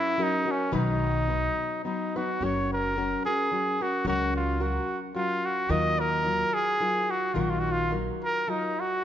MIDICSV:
0, 0, Header, 1, 4, 480
1, 0, Start_track
1, 0, Key_signature, 6, "major"
1, 0, Tempo, 551978
1, 638, Time_signature, 3, 2, 24, 8
1, 5925, Tempo, 560748
1, 7832, End_track
2, 0, Start_track
2, 0, Title_t, "Trumpet"
2, 0, Program_c, 0, 56
2, 0, Note_on_c, 0, 64, 95
2, 196, Note_on_c, 0, 63, 89
2, 209, Note_off_c, 0, 64, 0
2, 445, Note_on_c, 0, 61, 84
2, 458, Note_off_c, 0, 63, 0
2, 642, Note_off_c, 0, 61, 0
2, 647, Note_on_c, 0, 63, 83
2, 1579, Note_off_c, 0, 63, 0
2, 1605, Note_on_c, 0, 63, 65
2, 1883, Note_on_c, 0, 66, 74
2, 1897, Note_off_c, 0, 63, 0
2, 2122, Note_on_c, 0, 73, 74
2, 2135, Note_off_c, 0, 66, 0
2, 2367, Note_off_c, 0, 73, 0
2, 2375, Note_on_c, 0, 70, 78
2, 2812, Note_off_c, 0, 70, 0
2, 2831, Note_on_c, 0, 68, 86
2, 3323, Note_on_c, 0, 66, 82
2, 3336, Note_off_c, 0, 68, 0
2, 3541, Note_off_c, 0, 66, 0
2, 3547, Note_on_c, 0, 66, 93
2, 3778, Note_off_c, 0, 66, 0
2, 3790, Note_on_c, 0, 65, 70
2, 4017, Note_on_c, 0, 66, 67
2, 4030, Note_off_c, 0, 65, 0
2, 4343, Note_off_c, 0, 66, 0
2, 4481, Note_on_c, 0, 65, 83
2, 4743, Note_on_c, 0, 66, 85
2, 4756, Note_off_c, 0, 65, 0
2, 4966, Note_on_c, 0, 75, 97
2, 4979, Note_off_c, 0, 66, 0
2, 5214, Note_on_c, 0, 70, 97
2, 5228, Note_off_c, 0, 75, 0
2, 5688, Note_on_c, 0, 68, 103
2, 5701, Note_off_c, 0, 70, 0
2, 6176, Note_on_c, 0, 66, 87
2, 6188, Note_off_c, 0, 68, 0
2, 6375, Note_on_c, 0, 65, 62
2, 6388, Note_off_c, 0, 66, 0
2, 6433, Note_on_c, 0, 66, 67
2, 6446, Note_off_c, 0, 65, 0
2, 6511, Note_on_c, 0, 65, 71
2, 6524, Note_off_c, 0, 66, 0
2, 6592, Note_on_c, 0, 66, 74
2, 6605, Note_off_c, 0, 65, 0
2, 6698, Note_on_c, 0, 65, 79
2, 6710, Note_off_c, 0, 66, 0
2, 6897, Note_off_c, 0, 65, 0
2, 7147, Note_on_c, 0, 70, 94
2, 7364, Note_on_c, 0, 63, 81
2, 7377, Note_off_c, 0, 70, 0
2, 7627, Note_on_c, 0, 66, 84
2, 7640, Note_off_c, 0, 63, 0
2, 7832, Note_off_c, 0, 66, 0
2, 7832, End_track
3, 0, Start_track
3, 0, Title_t, "Nylon-string guitar"
3, 0, Program_c, 1, 24
3, 0, Note_on_c, 1, 54, 59
3, 0, Note_on_c, 1, 61, 64
3, 0, Note_on_c, 1, 66, 63
3, 0, Note_on_c, 1, 70, 61
3, 152, Note_off_c, 1, 54, 0
3, 154, Note_off_c, 1, 61, 0
3, 156, Note_on_c, 1, 54, 54
3, 161, Note_off_c, 1, 70, 0
3, 164, Note_off_c, 1, 66, 0
3, 164, Note_on_c, 1, 61, 62
3, 168, Note_on_c, 1, 66, 67
3, 171, Note_on_c, 1, 70, 65
3, 386, Note_off_c, 1, 70, 0
3, 396, Note_on_c, 1, 70, 57
3, 402, Note_off_c, 1, 66, 0
3, 409, Note_off_c, 1, 61, 0
3, 412, Note_on_c, 1, 66, 43
3, 413, Note_off_c, 1, 54, 0
3, 419, Note_on_c, 1, 61, 41
3, 622, Note_off_c, 1, 61, 0
3, 623, Note_on_c, 1, 54, 83
3, 625, Note_on_c, 1, 47, 83
3, 626, Note_on_c, 1, 51, 75
3, 626, Note_on_c, 1, 59, 82
3, 629, Note_off_c, 1, 70, 0
3, 630, Note_off_c, 1, 66, 0
3, 632, Note_on_c, 1, 71, 84
3, 633, Note_on_c, 1, 63, 87
3, 1110, Note_off_c, 1, 54, 0
3, 1110, Note_off_c, 1, 59, 0
3, 1113, Note_off_c, 1, 63, 0
3, 1114, Note_off_c, 1, 47, 0
3, 1114, Note_on_c, 1, 54, 53
3, 1115, Note_off_c, 1, 51, 0
3, 1118, Note_off_c, 1, 71, 0
3, 1120, Note_on_c, 1, 59, 57
3, 1123, Note_on_c, 1, 63, 50
3, 1129, Note_on_c, 1, 71, 58
3, 1598, Note_off_c, 1, 59, 0
3, 1603, Note_off_c, 1, 54, 0
3, 1607, Note_on_c, 1, 54, 61
3, 1608, Note_off_c, 1, 63, 0
3, 1608, Note_on_c, 1, 59, 57
3, 1614, Note_off_c, 1, 71, 0
3, 1619, Note_on_c, 1, 63, 59
3, 1625, Note_on_c, 1, 71, 58
3, 1867, Note_off_c, 1, 71, 0
3, 1869, Note_off_c, 1, 54, 0
3, 1870, Note_off_c, 1, 59, 0
3, 1875, Note_off_c, 1, 63, 0
3, 1878, Note_on_c, 1, 71, 54
3, 1885, Note_on_c, 1, 63, 48
3, 1893, Note_on_c, 1, 59, 49
3, 1896, Note_on_c, 1, 54, 42
3, 2085, Note_off_c, 1, 54, 0
3, 2095, Note_on_c, 1, 54, 60
3, 2100, Note_off_c, 1, 71, 0
3, 2102, Note_off_c, 1, 59, 0
3, 2104, Note_off_c, 1, 63, 0
3, 2105, Note_on_c, 1, 61, 76
3, 2108, Note_on_c, 1, 66, 74
3, 2113, Note_on_c, 1, 70, 66
3, 2578, Note_off_c, 1, 54, 0
3, 2580, Note_off_c, 1, 61, 0
3, 2581, Note_on_c, 1, 54, 46
3, 2586, Note_off_c, 1, 66, 0
3, 2587, Note_off_c, 1, 70, 0
3, 2590, Note_on_c, 1, 66, 53
3, 2590, Note_on_c, 1, 70, 50
3, 2591, Note_on_c, 1, 61, 51
3, 2830, Note_off_c, 1, 70, 0
3, 2836, Note_off_c, 1, 54, 0
3, 2838, Note_off_c, 1, 66, 0
3, 2840, Note_on_c, 1, 70, 41
3, 2841, Note_off_c, 1, 61, 0
3, 2848, Note_on_c, 1, 66, 39
3, 2850, Note_on_c, 1, 61, 33
3, 3049, Note_off_c, 1, 61, 0
3, 3058, Note_on_c, 1, 54, 49
3, 3059, Note_off_c, 1, 66, 0
3, 3059, Note_on_c, 1, 61, 49
3, 3061, Note_off_c, 1, 70, 0
3, 3069, Note_on_c, 1, 66, 54
3, 3069, Note_on_c, 1, 70, 61
3, 3301, Note_off_c, 1, 70, 0
3, 3309, Note_off_c, 1, 66, 0
3, 3312, Note_on_c, 1, 70, 46
3, 3314, Note_off_c, 1, 54, 0
3, 3314, Note_off_c, 1, 61, 0
3, 3320, Note_on_c, 1, 66, 40
3, 3328, Note_on_c, 1, 61, 37
3, 3526, Note_off_c, 1, 61, 0
3, 3528, Note_off_c, 1, 66, 0
3, 3528, Note_on_c, 1, 54, 69
3, 3535, Note_off_c, 1, 70, 0
3, 3536, Note_on_c, 1, 61, 80
3, 3539, Note_on_c, 1, 66, 75
3, 3545, Note_on_c, 1, 70, 80
3, 3992, Note_off_c, 1, 61, 0
3, 3996, Note_off_c, 1, 54, 0
3, 3998, Note_off_c, 1, 66, 0
3, 4000, Note_on_c, 1, 54, 48
3, 4001, Note_on_c, 1, 66, 51
3, 4003, Note_on_c, 1, 61, 54
3, 4004, Note_off_c, 1, 70, 0
3, 4007, Note_on_c, 1, 70, 51
3, 4465, Note_off_c, 1, 61, 0
3, 4475, Note_off_c, 1, 54, 0
3, 4475, Note_on_c, 1, 61, 60
3, 4478, Note_on_c, 1, 54, 52
3, 4484, Note_off_c, 1, 70, 0
3, 4486, Note_off_c, 1, 66, 0
3, 4487, Note_on_c, 1, 70, 58
3, 4489, Note_on_c, 1, 66, 61
3, 4946, Note_off_c, 1, 54, 0
3, 4948, Note_on_c, 1, 51, 82
3, 4950, Note_off_c, 1, 61, 0
3, 4950, Note_on_c, 1, 54, 82
3, 4954, Note_on_c, 1, 63, 81
3, 4955, Note_off_c, 1, 70, 0
3, 4956, Note_off_c, 1, 66, 0
3, 4959, Note_on_c, 1, 65, 90
3, 4959, Note_on_c, 1, 70, 74
3, 5425, Note_off_c, 1, 54, 0
3, 5429, Note_off_c, 1, 63, 0
3, 5433, Note_on_c, 1, 63, 62
3, 5435, Note_on_c, 1, 54, 56
3, 5439, Note_off_c, 1, 70, 0
3, 5444, Note_off_c, 1, 65, 0
3, 5447, Note_on_c, 1, 65, 57
3, 5449, Note_on_c, 1, 70, 61
3, 5474, Note_off_c, 1, 51, 0
3, 5904, Note_off_c, 1, 54, 0
3, 5912, Note_off_c, 1, 63, 0
3, 5913, Note_off_c, 1, 70, 0
3, 5915, Note_on_c, 1, 54, 58
3, 5916, Note_on_c, 1, 63, 54
3, 5923, Note_on_c, 1, 70, 56
3, 5925, Note_off_c, 1, 65, 0
3, 5929, Note_on_c, 1, 65, 61
3, 6370, Note_off_c, 1, 54, 0
3, 6376, Note_on_c, 1, 51, 70
3, 6380, Note_off_c, 1, 63, 0
3, 6381, Note_on_c, 1, 54, 69
3, 6382, Note_off_c, 1, 70, 0
3, 6383, Note_on_c, 1, 63, 86
3, 6384, Note_off_c, 1, 65, 0
3, 6387, Note_on_c, 1, 65, 80
3, 6392, Note_on_c, 1, 70, 75
3, 6845, Note_off_c, 1, 54, 0
3, 6855, Note_on_c, 1, 54, 51
3, 6859, Note_off_c, 1, 63, 0
3, 6862, Note_off_c, 1, 70, 0
3, 6862, Note_on_c, 1, 63, 58
3, 6863, Note_off_c, 1, 65, 0
3, 6867, Note_on_c, 1, 65, 50
3, 6873, Note_on_c, 1, 70, 54
3, 6892, Note_off_c, 1, 51, 0
3, 7340, Note_off_c, 1, 54, 0
3, 7348, Note_off_c, 1, 63, 0
3, 7350, Note_on_c, 1, 54, 51
3, 7352, Note_on_c, 1, 63, 44
3, 7353, Note_off_c, 1, 65, 0
3, 7354, Note_off_c, 1, 70, 0
3, 7356, Note_on_c, 1, 65, 56
3, 7365, Note_on_c, 1, 70, 51
3, 7830, Note_off_c, 1, 54, 0
3, 7832, Note_off_c, 1, 63, 0
3, 7832, Note_off_c, 1, 65, 0
3, 7832, Note_off_c, 1, 70, 0
3, 7832, End_track
4, 0, Start_track
4, 0, Title_t, "Upright bass"
4, 0, Program_c, 2, 32
4, 634, Note_on_c, 2, 35, 86
4, 1267, Note_off_c, 2, 35, 0
4, 2093, Note_on_c, 2, 30, 77
4, 2719, Note_off_c, 2, 30, 0
4, 3520, Note_on_c, 2, 37, 95
4, 4144, Note_off_c, 2, 37, 0
4, 4952, Note_on_c, 2, 39, 86
4, 5581, Note_off_c, 2, 39, 0
4, 6390, Note_on_c, 2, 34, 90
4, 7017, Note_off_c, 2, 34, 0
4, 7832, End_track
0, 0, End_of_file